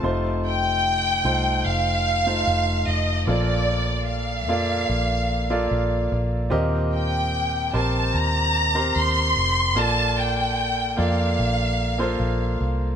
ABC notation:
X:1
M:4/4
L:1/16
Q:1/4=74
K:Bb
V:1 name="Violin section"
z2 g6 f6 e2 | d4 f8- f2 z2 | z2 g4 a2 b4 c'4 | a2 g4 f8 z2 |]
V:2 name="Grand piano"
[C,A,EFc]6 [A,EFc]4- [A,EFc] [A,EFc]4- [A,EFc] | [B,,F,B,FAd]6 [B,FAd]4- [B,FAd] [B,FAd]4- [B,FAd] | [B,,CGBe]6 [CGBc]4- [CGBc] [CGBc]4- [CGBc] | [B,FAd]6 [B,FAd]4- [B,FAd] [B,FAc]4- [B,FAc] |]
V:3 name="Fingered electric bass" clef=bass
F,,,6 C,,2 F,,,4 F,,,2 F,,,2 | B,,,6 F,,2 B,,,4 B,,,2 B,,,2 | E,,6 B,,,2 E,,4 E,,2 F,,,2 | B,,,6 F,,2 B,,,4 B,,,2 C,,2 |]